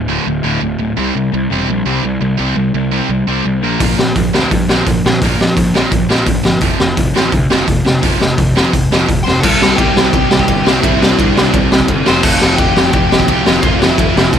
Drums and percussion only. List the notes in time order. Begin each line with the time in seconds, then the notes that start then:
3.80 kick, open hi-hat
3.99 snare
4.16 kick, open hi-hat
4.34 snare
4.51 kick, open hi-hat
4.69 snare
4.87 kick, open hi-hat
5.06 snare
5.22 kick, open hi-hat
5.41 snare
5.57 kick, open hi-hat
5.75 snare
5.92 kick, open hi-hat
6.10 snare
6.26 kick, open hi-hat
6.45 snare
6.61 kick, open hi-hat
6.80 snare
6.97 kick, open hi-hat
7.16 snare
7.32 kick, open hi-hat
7.51 snare
7.68 kick, open hi-hat
7.86 snare
8.03 kick, open hi-hat
8.21 snare
8.38 kick, open hi-hat
8.57 snare
8.73 kick, open hi-hat
8.92 snare
9.09 kick, open hi-hat
9.28 snare
9.43 kick, crash
9.62 snare
9.78 kick, ride
9.97 snare
10.13 kick, ride
10.31 snare
10.39 kick
10.48 kick, ride
10.67 snare
10.83 kick, ride
11.02 snare
11.19 kick, ride
11.37 snare
11.54 kick, ride
11.72 snare
11.80 kick
11.88 kick, ride
12.06 snare
12.23 kick, crash
12.41 snare
12.58 kick, ride
12.77 snare
12.93 kick, ride
13.12 snare
13.20 kick
13.28 kick, ride
13.46 snare
13.63 kick, ride
13.82 snare
13.98 kick, ride
14.17 snare
14.33 kick, ride